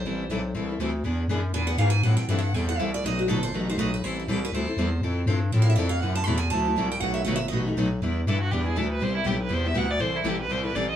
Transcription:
X:1
M:4/4
L:1/8
Q:"Swing" 1/4=241
K:Em
V:1 name="Steel-string acoustic guitar"
c4 z4 | z4 ^g f =f g | f g (3f e f g f e d | ^d F A c B c d B |
c E G B c4- | c2 z2 (3e =f e d f | f a b ^g a3 =g | f e f e ^d z3 |
z8 | z8 | z8 |]
V:2 name="Violin"
z8 | z8 | z8 | z8 |
z8 | z8 | z8 | z8 |
z2 A F G ^G A B | c E G B c e f d | c E G B c B d ^d |]
V:3 name="Steel-string acoustic guitar"
[E,G,CEA] z [E,G,CEA] z [E,G,CEA] [CEA] [E,G,CEA] z | [E,B,D^G] z [E,B,DG] z [E,B,DG] [B,DG] [E,B,DG] z | [E,G,CEA] z [E,G,CEA] z [E,G,CEA] [CEA] [E,G,CEA] z | [B,,F,A,^DF] z [B,,F,A,DF] z [B,,F,A,DF] [A,DF] [B,,F,A,DF] z |
[E,G,CEA] z [E,G,CEA] z [E,G,CEA] [CEA] [E,G,CEA] z | [=F,CEA] z [F,CEA] z [F,CEA] [CEA] [F,CEA] z | [C,E,A,EF] z [C,E,A,EF] z [C,E,A,EF] [A,EF] [C,E,A,EF] z | [B,,F,A,^DF] z [B,,F,A,DF] z [B,,F,A,DF] [A,DF] [B,,F,A,DF] z |
[E,G,DEB] z [E,G,DEB] z [E,G,DEB] [DEB] [E,G,DEB] z | [C,G,B,EG] z [C,G,B,EG] z [C,G,B,EG] [B,EG] [C,G,B,EG] z | [C,E,G,CEA] z [C,E,G,CEA] z [C,E,G,CEA] [G,CEA] [C,E,G,CEA] z |]
V:4 name="Steel-string acoustic guitar"
[E,G,CEA] z [E,G,CEA] z [E,G,CEA] z [E,G,CEA] z | [E,B,D^GB] z [E,B,DGB] z [E,B,DGB] z [E,B,DGB] z | [E,G,CEA] z [E,G,CEA] z [E,G,CEA] z [E,G,CEA] z | [B,,F,A,^DFB] z [B,,F,A,DFB] z [B,,F,A,DFB] z [B,,F,A,DFB] z |
[E,G,CEA] z [E,G,CEA] z [E,G,CEA] z [E,G,CEA] z | [=F,CEA] z [F,CEA] z [F,CEA] z [F,CEA] z | [F,CEA] z [F,CEA] z [F,CEA] z [F,CEA] z | [B,,F,A,^DFB] z [B,,F,A,DFB] z [B,,F,A,DFB] z [B,,F,A,DFB] z |
[E,G,DEB] z [E,G,DEB] z [E,G,DEB] z [E,G,DEB] z | [C,G,B,EG] z [C,G,B,EG] z [C,G,B,EG] z [C,G,B,EG] z | [C,E,G,CEA] z [C,E,G,CEA] z [C,E,G,CEA] z [C,E,G,CEA] z |]
V:5 name="FM bass" clef=bass
A,,,2 B,,,2 C,,2 D,,2 | E,,2 F,,2 E,,2 ^G,,2 | A,, A,, G,,2 E,,2 C,,2 | B,,,2 G,,,2 A,,,2 B,,,2 |
A,,,2 C,,2 D,, D,, E,,2 | =F,,2 G,,2 A,,2 F,,2 | F,,2 E,,2 D,,2 C,,2 | B,,,2 G,,,2 A,,,2 B,,,2 |
E,,2 G,,2 E,,2 D,,2 | C,,2 B,,,2 E,,2 D,,2 | C,,2 A,,,2 C,,2 A,,,2 |]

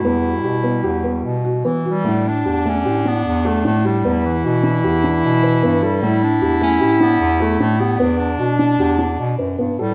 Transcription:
X:1
M:5/4
L:1/8
Q:1/4=151
K:Edor
V:1 name="Felt piano"
B,2 G B, G B,2 F B, F | A,2 G A, G D2 A D G | B,2 F D G D2 B B, A | A,2 G A, G D2 A D G |
B,2 F D G D2 B B, A |]
V:2 name="Cello"
G,8- G, z | D8- D2 | E8- E2 | E8- E2 |
D8- D z |]
V:3 name="Clarinet"
E8 z G,- | G, D2 C2 B,2 A, A, G,- | G, E,8 G,- | G, D2 C2 B,2 A, A, B,- |
B, D6- D z G, |]
V:4 name="Woodwind section" clef=bass
[E,G,F]8- [E,G,F]2 | z8 z2 | z8 z2 | z8 z2 |
z8 z2 |]
V:5 name="Bass clarinet" clef=bass
E,,2 B,,2 E,,2 B,,2 E,2 | A,,2 E,,2 A,,2 E,,2 A,,2 | E,,2 B,,2 E,,2 B,,2 G,,2 | A,,2 E,,2 A,,2 E,,2 A,,2 |
E,,2 B,,2 E,,2 B,, F,, G,, A,, |]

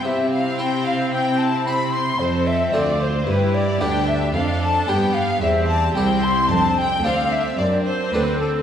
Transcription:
X:1
M:4/4
L:1/8
Q:1/4=111
K:C
V:1 name="Flute"
e f g f g a b c' | [K:Ddor] c e d c B d g e | f a g f e a g c' | a g f e d c B A |]
V:2 name="Violin section"
e f g f g a b c' | [K:Ddor] c e d c B d g e | f a g f e a g c' | a g f e d c B A |]
V:3 name="Violin section"
E8 | [K:Ddor] A2 F2 G4 | A2 G2 G2 E2 | D2 D2 D4 |]
V:4 name="Harpsichord"
z2 [Ec]2 z2 [Ec]2 | [K:Ddor] z2 [A,DA]2 z2 [B,DG]2 | z2 [B,DG]2 z2 [CEG]2 | z2 [CDA]2 z2 [CDA]2 |]
V:5 name="Harpsichord" clef=bass
C,8 | [K:Ddor] F,,2 D,,2 G,,2 D,,2 | F,,2 G,,2 E,,2 C,,2 | F,,2 D,,2 ^F,,2 D,,2 |]
V:6 name="Viola section"
C8 | [K:Ddor] C4 E2 D2 | D2 B,2 C2 C2 | C2 C2 C4 |]
V:7 name="Cello section" clef=bass
C,8 | [K:Ddor] F,,2 D,,2 G,,2 D,,2 | F,,2 G,,2 E,,2 C,,2 | F,,2 D,,2 ^F,,2 D,,2 |]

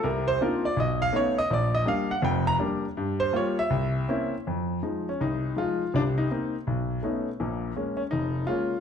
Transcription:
X:1
M:4/4
L:1/16
Q:"Swing" 1/4=164
K:Fm
V:1 name="Grand piano"
B2 c2 B2 =d2 ^d2 f2 ^c2 d2 | =d2 e2 f2 _g2 =g2 b2 z4 | z2 c2 d2 =e8- e z | z6 D2 E4 F4 |
=D2 E12 z2 | z6 D2 E4 F4 |]
V:2 name="Grand piano"
[C,,C,]4 [B,C=DEF]2 z2 =B,,,4 [=A,=B,^C^D]2 z2 | B,,,4 [G,B,=D]2 z2 [F,,,F,,]4 [G,B,D]2 z2 | G,,4 [G,B,F]2 z2 C,,4 [B,CD=E]2 z2 | F,,4 [F,A,E]2 z2 C,,4 [F,A,E]2 z2 |
[C,,C,]4 [B,CE]2 z2 =B,,,4 [=A,=B,^C^D]2 z2 | [B,,,B,,]4 [A,B,D]2 z2 F,,,4 [A,B,D]2 z2 |]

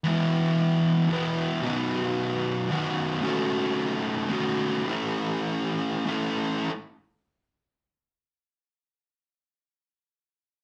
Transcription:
X:1
M:3/4
L:1/8
Q:1/4=106
K:E
V:1 name="Distorted electric guitar"
[E,G,B,E]4 [E,G,B,E]2 | [B,,D,F,B,F]4 [B,,D,F,B,F]2 | [A,CFA]4 [A,CFA]2 | [A,CEA]4 [A,CEA]2 |
z6 | z6 |]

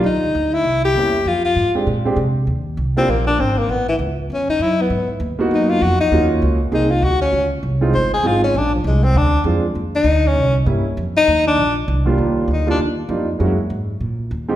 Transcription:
X:1
M:4/4
L:1/8
Q:"Swing" 1/4=198
K:Eb
V:1 name="Tenor saxophone"
E3 =E2 G3 | F F2 z4 z | z3 C B, D C B, | _C =E, z2 ^C _E =E _C- |
_C z3 E F _G E- | E z3 E F _G _D- | _D z3 c A F D | D F, A, C D2 z2 |
z E2 _D2 z3 | z E2 D2 z3 | z2 E D z4 | z8 |]
V:2 name="Grand piano"
z6 [G,B,_D=E] z | z3 [A,CDG] z [A,CDG] z2 | z3 [G,B,DF] z4 | z8 |
z3 [B,_CE_G]3 z2 | [B,_DF_G]3 z [B,CEA] z3 | z3 [A,CEF] z2 [A,CEF] z | z6 [A,CDF] z |
z6 [G,B,_D=E] z | z6 z [E,,G,B,DF]- | [E,,G,B,DF]2 z [G,B,DEF] z2 [G,B,DEF] z | [A,B,_D_F_G] z6 [A,CE=F=G] |]
V:3 name="Upright bass" clef=bass
E,,2 D,,2 C,,2 =E,,2 | F,,2 A,,2 B,,2 C,2 | E,,2 C,,2 B,,,2 A,,,2 | =A,,,2 ^C,,2 =E,, z _G,,2 |
A,,2 E,, z _G,,2 F,,2 | E,,2 _D,,2 C,,2 =D,,2 | _D,,2 C,,2 G,,,2 A,,,2 | B,,,2 C,,2 D,,2 F,,2 |
E,,2 D,,2 C,,2 G,,2 | F,,2 E,,2 B,,,2 C,,2 | E,,2 D,,2 E,,2 F,,2 | _G,, z A,,2 B,,2 E,,2 |]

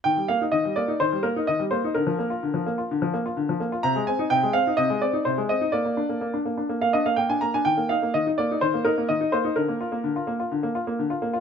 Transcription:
X:1
M:4/4
L:1/16
Q:1/4=126
K:Eb
V:1 name="Grand piano"
g2 f2 e2 d2 c2 B2 e2 c2 | B12- B2 z2 | b2 a2 g2 f2 e2 d2 c2 e2 | d8- d f e f g a b a |
g2 f2 e2 d2 c2 B2 e2 c2 | B12- B2 z2 |]
V:2 name="Grand piano"
E, G, B, E E, G, B, E E, G, B, E E, G, B, E | D, F, B, F D, F, B, F D, F, B, F D, F, B, F | C, A, C E C, A, C E C, A, C E C, A, C E | B, B, D B, B, D B, D B, B, D B, B, D B, D |
E, B, E B, E, E B, E E, B, E B, E, E B, E | D, B, F B, D, F B, F D, B, F B, D, F B, F |]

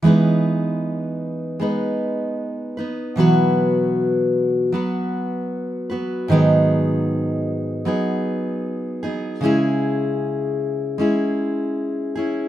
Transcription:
X:1
M:4/4
L:1/8
Q:1/4=77
K:E
V:1 name="Steel-string acoustic guitar"
[E,G,B,DB]4 [G,B,DB]3 [B,DB] | [B,,E,F,B,FB]4 [F,B,FB]3 [F,B,FB] | [G,,D,F,B,DG]4 [F,B,DG]3 [F,B,DG] | [C,G,CEG]4 [G,CEG]3 [CEG] |]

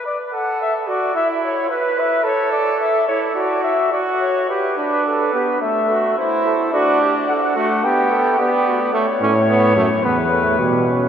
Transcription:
X:1
M:4/4
L:1/16
Q:1/4=108
K:G
V:1 name="Cornet"
d2 f2 e2 d2 e2 ^c2 B2 e2 | ^c2 d2 e2 c2 d2 e2 d2 c2 | B4 B4 e4 c4 | d4 f/2 e/2 f3 g4 d4 |
^c8 B6 z2 |]
V:2 name="Trumpet"
z2 A4 F2 E4 B4 | A6 E2 F4 F4 | G2 B2 A2 G2 A2 F2 E2 A2 | F2 G2 A2 F2 G2 A2 G2 F2 |
z16 |]
V:3 name="Trombone"
z16 | z16 | z2 D4 B,2 A,4 E4 | D6 A,2 B,4 B,4 |
A,2 ^C2 B,2 A,2 B,2 A,2 G,2 C2 |]
V:4 name="Bass trombone" clef=bass
z16 | z16 | z16 | z16 |
z2 A,,4 F,,2 E,,4 B,,4 |]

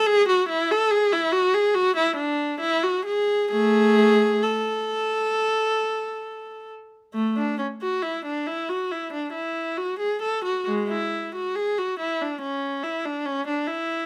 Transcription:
X:1
M:4/4
L:1/16
Q:1/4=68
K:A
V:1 name="Viola"
G F E A G E F G F E D2 E F G2 | [A,G]4 A8- A2 z2 | A, D C F E D E F E D E2 F G A F | G, E2 F G F E D C2 E D C D E2 |]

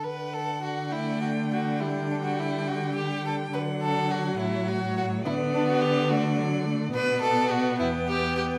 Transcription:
X:1
M:6/8
L:1/16
Q:3/8=70
K:D
V:1 name="Violin"
f6 g6 | g12 | f6 c6 | d6 d6 |
d6 g6 |]
V:2 name="Violin"
B2 A2 F2 E2 F2 F2 | E2 D F E2 F2 G2 A2 | B2 A2 F2 E2 F2 F2 | E2 D F G2 F2 z4 |
B2 A2 F2 E2 G2 G2 |]
V:3 name="Viola"
z6 A,6 | G,12 | F,12 | B,6 A,2 F,2 A,2 |
B,12 |]
V:4 name="Cello" clef=bass
D,12- | D,12 | D,6 A,,6 | D,12 |
B,,6 E,,6 |]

